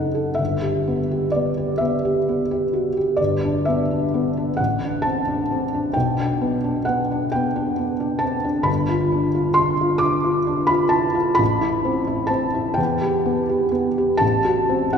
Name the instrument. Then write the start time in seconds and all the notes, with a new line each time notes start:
felt piano
Already playing: F#1 D#4 A4 D#5 F#5
0.15 A4
0.35 G1 E5
0.62 G4
0.88 B3
1.11 G4
1.32 B3 D5
1.57 G4
1.78 B3 E5
2.05 G4
2.29 B3
2.51 G4
2.73 F#4
2.97 G4
3.17 G1 D5
3.44 D4
3.65 B3 E5
3.91 D4
4.14 B3
4.37 D4
4.57 A1 F#5
4.84 D4
5.02 A5
5.06 C4
5.28 D4
5.52 C4
5.74 D4
5.93 B1 G5
6.19 D4
6.41 B3
6.64 D4
6.85 B3 F#5
7.12 D4
7.32 B3 G5
7.56 D4
7.78 B3
8.00 D4
8.19 C4 A5
8.44 D4
8.62 G1 B5
8.89 F4
9.12 D4
9.35 F4
9.54 D4 C6
9.81 F4
9.98 D4 D6
10.24 F4
10.47 D4
10.67 F4 B5
10.89 E4 A5
11.15 F4
11.35 A1 B5
11.61 E4
11.85 C4
12.07 E4
12.27 C4 A5
12.55 E4
12.74 E2 G5
13.01 G4
13.26 B3
13.49 G4
13.72 B3
13.98 G4
14.17 A1 A5
14.44 F#4
14.69 C4
14.93 F#5